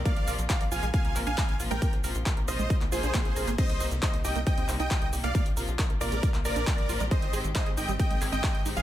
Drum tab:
CC |----------------|----------------|x---------------|----------------|
HH |xxoxxxoxxxoxxxox|xxoxxxoxxxoxxxox|xxoxxxoxxxoxxxox|xxoxxxoxxxoxxxox|
SH |x-xxx-xxx-xxx-xx|x-xxx-xxx-xxx-xx|x-xxx-xxx-xxx-xx|x-xxx-xxx-xxx-xx|
CP |----x-----x-x---|----x----x--x---|----x-----x-x---|----x----x--x---|
BD |o---o---o---o---|o---o---o---o---|o---o---o---o---|o---o---o---o---|

CC |----------------|
HH |xxoxxxoxxxoxxxox|
SH |x-xxx-xxx-xxx-xx|
CP |----x-----x-x---|
BD |o---o---o---o---|